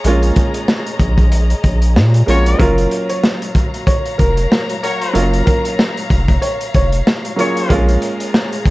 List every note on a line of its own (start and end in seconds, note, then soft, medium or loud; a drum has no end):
0.00 2.56 G#4 medium
0.00 2.56 C#5 medium
0.00 2.57 D#5 medium
0.00 2.56 A#5 medium
0.04 0.32 A#1 loud
0.04 2.12 G#3 medium
0.04 2.13 A#3 medium
0.04 2.13 C#4 medium
0.04 2.14 F4 loud
0.04 closed hi-hat loud
0.23 closed hi-hat medium
0.36 kick loud
0.36 closed hi-hat medium
0.54 closed hi-hat medium
0.68 snare loud
0.86 closed hi-hat medium
1.00 1.54 A#1 medium
1.00 kick medium
1.00 closed hi-hat medium
1.18 kick loud
1.18 closed hi-hat medium
1.32 closed hi-hat medium
1.50 closed hi-hat medium
1.64 1.97 A#1 loud
1.64 kick medium
1.64 closed hi-hat medium
1.82 closed hi-hat medium
1.96 2.23 A#2 loud
1.96 snare loud
2.14 closed hi-hat medium
2.26 2.55 A#1 loud
2.26 2.57 G#3 medium
2.26 2.57 A#3 medium
2.26 2.58 C#4 medium
2.26 2.58 F4 medium
2.26 2.71 F#4 medium
2.26 2.71 A#4 medium
2.26 2.71 C#5 loud
2.26 closed hi-hat medium
2.46 closed hi-hat medium
2.58 2.87 F#1 loud
2.58 7.66 F#3 medium
2.58 4.67 F#3 loud
2.58 4.67 A#3 medium
2.58 4.68 C#4 medium
2.58 4.68 F4 loud
2.58 3.06 A#4 loud
2.58 7.66 C#5 medium
2.58 8.70 F5 medium
2.58 7.66 A#5 medium
2.58 kick loud
2.58 closed hi-hat loud
2.78 closed hi-hat medium
2.91 closed hi-hat medium
3.09 3.38 C#5 medium
3.09 closed hi-hat medium
3.24 snare loud
3.42 closed hi-hat medium
3.55 kick medium
3.55 closed hi-hat medium
3.74 closed hi-hat medium
3.87 4.16 C#5 medium
3.87 kick loud
3.87 closed hi-hat medium
4.05 closed hi-hat medium
4.18 4.47 F1 medium
4.18 4.66 A#4 medium
4.18 kick medium
4.18 closed hi-hat medium
4.37 closed hi-hat medium
4.52 snare loud
4.69 closed hi-hat medium
4.84 5.26 F#4 loud
4.84 5.26 A#4 loud
4.84 5.26 C#5 loud
4.84 closed hi-hat medium
5.01 closed hi-hat medium
5.13 5.42 F#1 loud
5.13 7.22 F#3 medium
5.13 7.22 A#3 medium
5.13 7.23 C#4 medium
5.13 7.23 F4 loud
5.13 closed hi-hat loud
5.33 closed hi-hat medium
5.46 5.93 A#4 medium
5.46 kick loud
5.46 closed hi-hat medium
5.65 closed hi-hat medium
5.79 snare loud
5.97 closed hi-hat medium
6.10 6.38 F1 medium
6.10 kick medium
6.10 closed hi-hat medium
6.28 kick loud
6.28 closed hi-hat medium
6.42 6.71 C#5 medium
6.42 closed hi-hat medium
6.61 closed hi-hat medium
6.74 7.02 F1 medium
6.74 7.67 C#5 medium
6.74 kick medium
6.74 closed hi-hat medium
6.92 closed hi-hat medium
7.07 snare loud
7.25 closed hi-hat medium
7.36 7.67 F#3 medium
7.36 7.67 A#3 medium
7.36 7.68 C#4 medium
7.36 7.68 F4 medium
7.36 7.82 G#4 loud
7.36 7.82 A#4 loud
7.36 7.82 C#5 loud
7.36 closed hi-hat medium
7.57 closed hi-hat medium
7.69 7.97 A#1 loud
7.69 8.70 G#3 loud
7.69 8.70 A#3 medium
7.69 8.70 C#4 medium
7.69 8.70 F4 loud
7.69 8.70 G#4 medium
7.69 8.70 C#5 medium
7.69 8.70 A#5 medium
7.69 kick loud
7.69 closed hi-hat loud
7.88 closed hi-hat medium
8.02 closed hi-hat medium
8.20 closed hi-hat medium
8.34 snare loud
8.53 closed hi-hat medium
8.66 kick medium
8.66 closed hi-hat medium